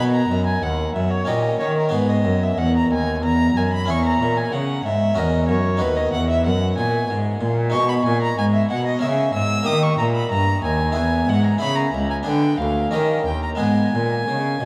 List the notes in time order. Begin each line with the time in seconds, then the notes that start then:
Already playing: B2 B3 D#4 B4
0.00 B2
0.14 A#5
0.30 F#2
0.47 G#5
0.63 D#2 F#5
0.94 F#2 E5
1.11 C#5
1.25 A#2 C#4 D#4 G4 D#5
1.29 A#2
1.60 D#3 C#5
1.78 A#4
1.89 B3 D#4 G#4
1.93 G#2 B4
2.10 D#5
2.25 F#2
2.43 E5
2.58 E2 F#5
2.77 A#5
2.90 D#2 G#5
3.22 E2 A#5
3.55 F#2 G#5
3.73 B5
3.85 E2 C#4 E4 G#4
3.90 E2 C#6
4.06 A#5
4.20 A#2
4.37 G#5
4.52 C#3 F#5
4.85 G#2 E5
5.15 E2 C#4 F#4 A#4 D#5
5.48 F#2 C#5
5.77 D#4 F#4 B4
5.82 D#2
5.97 D#5
6.13 E2 F#5
6.30 E5
6.46 F#2 F#5
6.78 A#2 G#5
7.10 G#2
7.41 A#2
7.70 D#4 G#4 D#5 C#6
7.74 B2
7.89 B5
8.05 A#2 G#5
8.22 A#5
8.38 G#2 G#5
8.54 E5
8.70 B2 F#5
8.86 D#5
8.99 C#3 C#4 G#4 E5
9.03 C#3
9.35 G#2 E6
9.63 A#3 G4 D#5 D#6
9.68 D#3
9.83 C#6
9.98 A#2 A#5
10.14 B5
10.31 G2 A#5
10.64 D#2 G#5
10.92 E2 E4 G#4 B4 G#5
11.29 G#2 F#5
11.44 A#5
11.58 C#3 E4 G#4 C#5 B5
11.76 A#5
11.94 C#2
12.10 G#5
12.23 D3 D4 G#4 B4 G5
12.28 D3
12.58 D2 F5
12.62 D2
12.91 D#3 C#4 G4 A#4 D#5
13.26 D#2 G5
13.43 A#5
13.55 G#3 B3 G#4
13.60 G#2 B4 G#5
13.95 A#2
14.28 C#3
14.61 B2